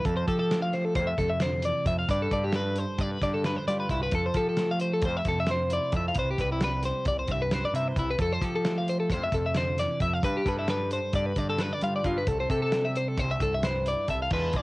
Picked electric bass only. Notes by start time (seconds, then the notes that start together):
0.05 F2
0.27 F3
0.95 F2
1.18 F2
1.85 F2
2.09 G2
2.32 G2
2.98 G2
3.22 G2
3.68 G3
3.89 C2
4.12 F2
4.34 F3
5.02 F2
5.26 F2
5.93 F2
6.15 C2
6.38 C2
7.05 C2
7.28 C2
7.74 C3
7.97 C2
8.19 F2
8.41 F3
9.10 F2
9.32 F2
10.00 F2
10.23 G2
10.46 G2
11.13 G2
11.36 G2
11.83 G3
12.04 G2
12.27 C2
12.50 C3
13.18 C2
13.40 C2
14.08 C2
14.31 E2
14.54 B1